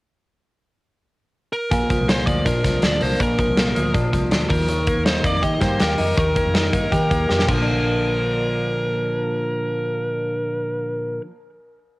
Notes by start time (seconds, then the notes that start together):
1.53 A#4
1.71 A#1 A#2, kick, closed hi-hat
1.90 F3, kick, closed hi-hat
2.00 C2
2.08 A#3 C5, snare, closed hi-hat
2.27 D2 F3 D5, kick, closed hi-hat
2.45 A#2 D4 A#4, kick, closed hi-hat
2.64 C2 F3, kick, snare, closed hi-hat
2.82 D2 D4 D5, snare, closed hi-hat
3.01 C2 A#3 C5, open hi-hat
3.20 A#1 A#2 A#4, kick, closed hi-hat
3.38 F3 A#4, kick, closed hi-hat
3.48 C2
3.57 A#3, snare, closed hi-hat
3.75 D2 F3, closed hi-hat
3.94 A#2 D4, kick, closed hi-hat
4.13 C2 F3, kick, closed hi-hat
4.31 D2 D4, snare, closed hi-hat
4.49 D#2 D#3 A#4, kick, open hi-hat
4.69 D#3, closed hi-hat
4.87 A#3, kick, closed hi-hat
4.97 D#2
5.06 D#4 C5, snare, closed hi-hat
5.24 F2 A#3 D5, kick, closed hi-hat
5.42 D#3 G4 D#5, kick, closed hi-hat
5.61 G2 A#3 C5, kick, snare, closed hi-hat
5.80 D#2 G4 A#4, snare, closed hi-hat
5.98 F2 D#4, open hi-hat
6.17 D#2 D#3 A#4, kick, closed hi-hat
6.36 A#3, kick, closed hi-hat
6.45 F2
6.54 D#4, snare, closed hi-hat
6.72 G2 A#3, kick, closed hi-hat
6.92 D#3 G4, kick, closed hi-hat
7.10 D#2 A#3, kick, closed hi-hat
7.29 F2 G4, snare
7.39 A#2, snare
7.48 A#1 D3 A#4, kick, crash
7.53 F3
7.58 A#3
7.62 D4